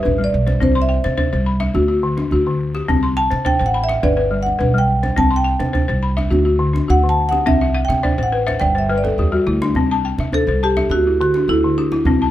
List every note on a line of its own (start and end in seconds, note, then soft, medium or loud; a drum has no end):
0.00 0.33 G4 medium
0.00 0.47 B4 medium
0.00 0.25 E5 medium
0.05 0.31 A1 medium
0.05 djembe bass medium
0.18 0.47 G3 medium
0.18 djembe slap soft
0.24 0.63 D5 medium
0.34 0.59 B1 loud
0.47 0.76 C5 medium
0.47 djembe slap soft
0.47 djembe tone medium
0.60 0.98 C2 medium
0.60 0.90 C4 medium
0.60 0.82 C5 medium
0.60 djembe bass medium
0.75 1.18 C6 medium
0.82 1.34 E5 medium
0.89 1.32 G5 medium
1.04 1.29 C3 medium
1.04 1.16 C5 medium
1.04 djembe slap medium
1.04 djembe tone soft
1.17 1.31 C5 medium
1.17 djembe bass medium
1.33 1.68 C2 medium
1.33 1.75 C5 medium
1.46 1.90 B5 medium
1.60 1.75 E5 medium
1.60 djembe slap medium
1.60 djembe tone soft
1.74 2.22 D2 medium
1.74 1.87 F#4 medium
1.74 djembe bass medium
1.88 2.31 F#4 medium
2.02 2.32 D3 medium
2.02 djembe slap soft
2.17 2.60 D4 medium
2.17 djembe slap soft
2.17 djembe tone soft
2.31 2.80 D2 medium
2.31 2.75 F#4 medium
2.31 djembe bass medium
2.47 2.75 D3 medium
2.60 djembe slap soft
2.74 3.04 G4 medium
2.74 djembe slap soft
2.88 3.25 C2 medium
2.88 3.17 C4 medium
2.88 djembe bass medium
3.03 3.46 C6 medium
3.17 3.60 G5 medium
3.17 3.44 A5 loud
3.31 3.56 C3 medium
3.31 3.44 C5 medium
3.31 djembe slap medium
3.45 3.58 C5 medium
3.45 3.64 G5 loud
3.45 djembe bass medium
3.59 3.96 A1 medium
3.59 4.03 C5 medium
3.66 3.85 F#5 medium
3.74 4.18 B5 medium
3.84 4.04 E5 medium
3.89 4.03 E5 medium
3.89 djembe slap medium
4.03 4.51 G1 loud
4.03 4.16 B4 medium
4.03 4.39 D5 medium
4.03 djembe bass medium
4.17 4.58 B4 medium
4.31 4.60 G3 medium
4.31 djembe slap soft
4.43 4.81 F#5 medium
4.43 djembe slap soft
4.43 djembe tone soft
4.59 5.08 B1 medium
4.59 5.03 B4 medium
4.59 djembe bass medium
4.74 5.03 G3 medium
4.78 5.14 G5 loud
4.89 djembe slap soft
5.03 5.32 C5 medium
5.03 djembe slap medium
5.03 djembe tone medium
5.16 5.54 C2 medium
5.16 5.46 C4 medium
5.16 5.26 A5 loud
5.16 djembe bass medium
5.31 5.74 C6 medium
5.36 5.90 G5 medium
5.44 5.88 G5 medium
5.59 5.84 C3 medium
5.59 5.72 C5 medium
5.59 djembe slap medium
5.59 djembe tone medium
5.73 5.87 C5 medium
5.73 djembe bass medium
5.88 6.25 C2 medium
5.88 6.31 C5 medium
6.03 6.46 B5 medium
6.17 6.31 E5 medium
6.17 djembe slap medium
6.17 djembe tone medium
6.30 6.79 D2 medium
6.30 6.44 F#4 medium
6.30 djembe bass medium
6.45 6.87 F#4 medium
6.59 6.88 D3 medium
6.59 djembe slap soft
6.73 7.17 D4 medium
6.73 djembe slap medium
6.73 djembe tone medium
6.88 7.37 D2 loud
6.88 7.32 F#4 medium
6.88 7.07 F#5 loud
6.88 djembe bass medium
7.03 7.32 D3 medium
7.09 7.28 A5 loud
7.19 djembe slap soft
7.29 7.60 G4 medium
7.29 7.46 F#5 loud
7.29 djembe slap medium
7.29 djembe tone medium
7.46 7.82 C2 medium
7.46 7.75 C4 medium
7.46 7.86 E5 loud
7.46 7.73 F#5 medium
7.46 djembe bass medium
7.61 7.87 E5 medium
7.61 djembe slap soft
7.75 8.01 F#5 medium
7.85 8.16 E5 medium
7.85 8.20 G5 medium
7.89 8.13 C3 medium
7.89 djembe slap medium
7.89 djembe tone medium
8.03 8.17 C5 medium
8.03 8.30 D5 medium
8.03 djembe bass medium
8.18 8.54 A1 medium
8.18 8.45 C5 medium
8.23 8.62 F#5 medium
8.32 8.59 B4 medium
8.47 8.74 C5 medium
8.47 8.61 E5 medium
8.47 djembe slap soft
8.47 djembe tone medium
8.60 9.09 G1 loud
8.60 8.88 D5 medium
8.60 8.78 G5 loud
8.60 djembe slap soft
8.60 djembe bass medium
8.75 9.02 C5 medium
8.75 8.99 E5 medium
8.89 9.18 G3 medium
8.89 9.16 B4 medium
8.98 9.71 D5 medium
9.04 9.31 A4 medium
9.04 djembe slap medium
9.04 djembe tone medium
9.18 9.44 E2 medium
9.18 9.45 G4 medium
9.18 djembe slap soft
9.18 djembe bass medium
9.32 9.61 G3 medium
9.32 9.59 F#4 medium
9.47 9.73 D2 loud
9.47 9.74 E4 medium
9.62 9.88 D4 medium
9.62 djembe slap medium
9.62 djembe tone medium
9.75 10.11 C2 medium
9.75 10.05 C4 medium
9.75 djembe bass medium
9.91 10.34 A5 medium
10.05 10.48 G5 medium
10.18 10.43 C3 medium
10.18 10.62 E5 medium
10.18 djembe slap medium
10.18 djembe tone medium
10.33 10.60 A4 loud
10.33 10.47 C5 medium
10.33 djembe bass medium
10.47 10.83 C2 medium
10.47 10.91 C5 medium
10.63 10.92 G4 loud
10.63 11.06 A5 medium
10.77 10.91 E5 medium
10.77 djembe slap medium
10.77 djembe tone medium
10.89 11.38 D2 medium
10.89 11.20 F#4 loud
10.89 11.35 F#4 medium
10.89 djembe bass medium
11.07 11.49 E4 medium
11.20 11.49 D3 medium
11.20 11.34 F#4 medium
11.20 djembe slap soft
11.34 11.78 D4 medium
11.34 djembe slap medium
11.48 11.96 D2 medium
11.48 11.62 E4 medium
11.48 11.92 A4 medium
11.48 djembe bass medium
11.64 11.92 D3 medium
11.77 12.31 D4 medium
11.77 12.21 G4 medium
11.77 djembe slap soft
11.92 12.21 E4 medium
11.92 djembe slap medium
11.92 djembe tone medium
12.05 12.31 C2 medium
12.05 12.31 C4 medium
12.05 djembe bass medium
12.22 12.31 A5 medium